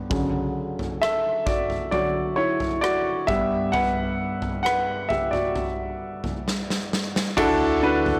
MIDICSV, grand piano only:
0, 0, Header, 1, 2, 480
1, 0, Start_track
1, 0, Key_signature, 2, "major"
1, 0, Tempo, 909091
1, 57, Time_signature, 4, 2, 24, 8
1, 4328, End_track
2, 0, Start_track
2, 0, Title_t, "Grand piano"
2, 0, Program_c, 0, 0
2, 0, Control_c, 0, 64, 127
2, 0, Note_on_c, 0, 43, 43
2, 0, Note_on_c, 0, 55, 36
2, 0, Note_on_c, 0, 59, 48
2, 0, Note_on_c, 0, 67, 63
2, 52, Note_on_c, 0, 50, 44
2, 55, Note_on_c, 0, 54, 41
2, 57, Note_on_c, 0, 49, 52
2, 64, Control_c, 0, 64, 0
2, 65, Note_off_c, 0, 43, 0
2, 67, Note_off_c, 0, 55, 0
2, 68, Note_off_c, 0, 59, 0
2, 69, Note_off_c, 0, 67, 0
2, 140, Control_c, 0, 64, 127
2, 536, Note_on_c, 0, 76, 82
2, 539, Note_on_c, 0, 69, 57
2, 761, Note_off_c, 0, 69, 0
2, 772, Note_on_c, 0, 74, 64
2, 777, Note_on_c, 0, 66, 46
2, 784, Note_off_c, 0, 76, 0
2, 1000, Note_off_c, 0, 66, 0
2, 1003, Note_off_c, 0, 74, 0
2, 1004, Note_off_c, 0, 50, 0
2, 1006, Note_off_c, 0, 54, 0
2, 1010, Note_on_c, 0, 74, 74
2, 1012, Note_on_c, 0, 50, 39
2, 1014, Note_on_c, 0, 54, 38
2, 1017, Note_on_c, 0, 73, 45
2, 1018, Note_on_c, 0, 66, 55
2, 1233, Note_off_c, 0, 50, 0
2, 1234, Note_off_c, 0, 54, 0
2, 1236, Note_off_c, 0, 73, 0
2, 1241, Note_off_c, 0, 66, 0
2, 1246, Note_on_c, 0, 73, 74
2, 1255, Note_on_c, 0, 64, 56
2, 1261, Note_off_c, 0, 74, 0
2, 1302, Note_off_c, 0, 73, 0
2, 1309, Note_off_c, 0, 64, 0
2, 1485, Note_on_c, 0, 74, 80
2, 1494, Note_on_c, 0, 66, 67
2, 1716, Note_off_c, 0, 49, 0
2, 1718, Note_off_c, 0, 66, 0
2, 1727, Note_on_c, 0, 76, 85
2, 1730, Note_on_c, 0, 43, 50
2, 1734, Note_on_c, 0, 55, 45
2, 1737, Note_on_c, 0, 59, 57
2, 1738, Note_off_c, 0, 74, 0
2, 1739, Note_on_c, 0, 67, 60
2, 1744, Control_c, 0, 64, 0
2, 1835, Control_c, 0, 64, 127
2, 1961, Note_off_c, 0, 67, 0
2, 1964, Note_on_c, 0, 78, 88
2, 1976, Note_on_c, 0, 71, 66
2, 1979, Note_off_c, 0, 76, 0
2, 2435, Note_off_c, 0, 71, 0
2, 2436, Note_off_c, 0, 78, 0
2, 2444, Note_on_c, 0, 78, 87
2, 2455, Note_on_c, 0, 71, 64
2, 2679, Note_off_c, 0, 71, 0
2, 2686, Note_on_c, 0, 76, 66
2, 2696, Note_on_c, 0, 67, 50
2, 2698, Note_off_c, 0, 78, 0
2, 2803, Note_on_c, 0, 74, 65
2, 2808, Note_off_c, 0, 67, 0
2, 2815, Note_off_c, 0, 76, 0
2, 2816, Note_on_c, 0, 66, 48
2, 3509, Note_off_c, 0, 74, 0
2, 3515, Note_off_c, 0, 66, 0
2, 3632, Note_off_c, 0, 43, 0
2, 3634, Note_off_c, 0, 55, 0
2, 3636, Note_off_c, 0, 59, 0
2, 3891, Note_on_c, 0, 62, 108
2, 3894, Note_on_c, 0, 50, 67
2, 3894, Note_on_c, 0, 64, 97
2, 3894, Note_on_c, 0, 66, 94
2, 3896, Note_on_c, 0, 69, 116
2, 3903, Control_c, 0, 64, 0
2, 3991, Control_c, 0, 64, 127
2, 4122, Note_off_c, 0, 62, 0
2, 4123, Note_off_c, 0, 64, 0
2, 4124, Note_off_c, 0, 66, 0
2, 4124, Note_off_c, 0, 69, 0
2, 4132, Note_on_c, 0, 62, 78
2, 4134, Note_on_c, 0, 64, 66
2, 4136, Note_on_c, 0, 66, 77
2, 4136, Note_on_c, 0, 71, 89
2, 4328, Note_off_c, 0, 50, 0
2, 4328, Note_off_c, 0, 62, 0
2, 4328, Note_off_c, 0, 64, 0
2, 4328, Note_off_c, 0, 66, 0
2, 4328, Note_off_c, 0, 71, 0
2, 4328, End_track
0, 0, End_of_file